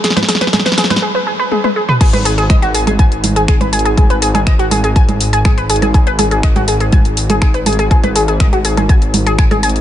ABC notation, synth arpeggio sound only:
X:1
M:4/4
L:1/16
Q:1/4=122
K:G#m
V:1 name="Synth arpeggio sound"
G B G B G B G B G B G B G B G B | [Gg] [Bb] [Gg] [Gg] [dd'] [Ff] [Gg] [Gg] [gg'] z2 [Gg] [Gg] [Bb] [Gg] [Gg] | [Gg] [Bb] [Gg] [Gg] [dd'] [Ff] [Gg] [Gg] [gg'] z2 [Gg] [Gg] [Bb] [Gg] [Gg] | [Gg] [Bb] [Gg] [Gg] [dd'] [Ff] [Gg] [Gg] [gg'] z2 [Gg] [Gg] [Bb] [Gg] [Gg] |
[Gg] [Bb] [Gg] [Gg] [dd'] [Ff] [Gg] [Gg] [gg'] z2 [Gg] [gg'] [Gg] [gg'] z |]